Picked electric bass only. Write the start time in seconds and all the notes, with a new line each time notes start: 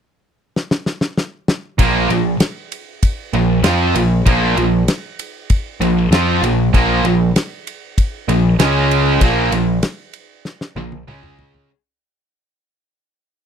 1.78 A#1
2.10 A#1
3.33 A#1
3.63 F2
3.95 A#1
4.26 A#1
4.57 A#1
5.80 A#1
6.11 F2
6.42 A#1
6.74 A#1
7.03 A#1
8.28 A#1
8.60 C#2
9.21 A#1
9.52 A#1
10.76 A#1
11.07 C#2